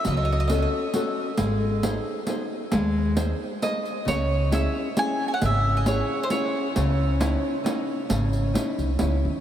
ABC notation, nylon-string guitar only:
X:1
M:3/4
L:1/8
Q:1/4=134
K:C#m
V:1 name="Nylon-string guitar"
F,2 [CFA]2 [CFA]2 | G,2 [DG^B]2 [DGB]2 | G,2 [DG^B]2 [DGB]2 | C,2 [CEG]2 [CEG]2 |
C,2 [CEG]2 [CEG]2 | C,2 [CDE]2 [CDE]2 | C,2 [CDE]2 [CDE]2 |]